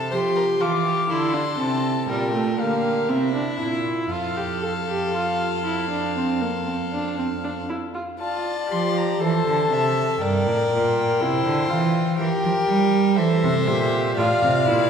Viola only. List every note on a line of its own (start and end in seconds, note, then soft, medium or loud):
0.11 0.62 G4 medium
0.61 1.09 F4 medium
1.09 1.35 E4 medium
1.34 1.57 D4 medium
1.58 2.07 C4 medium
2.08 2.32 G3 medium
2.33 2.57 A3 medium
2.58 3.10 A#3 medium
3.09 3.34 C4 medium
3.34 3.59 D4 medium
3.59 4.13 E4 medium
4.11 4.38 F4 medium
4.37 4.62 G4 medium
4.62 4.70 A4 medium
4.88 5.13 G4 medium
5.14 5.64 F4 medium
5.65 5.89 E4 medium
5.90 6.15 D4 medium
6.17 6.43 C4 medium
6.41 6.66 A#3 medium
6.67 6.75 C4 medium
6.92 7.18 D4 medium
7.18 7.26 C4 medium
7.44 7.52 D4 medium
7.69 7.77 E4 medium
7.94 8.02 F4 medium
8.20 8.67 F4 medium
8.69 9.22 G4 medium
9.21 10.23 A4 medium
10.21 11.22 A#4 medium
11.21 11.71 E4 medium
11.70 12.17 F4 medium
12.18 13.15 G4 medium
13.17 13.69 A4 medium
13.67 14.19 G4 medium
14.18 14.66 F4 medium
14.67 14.90 E4 medium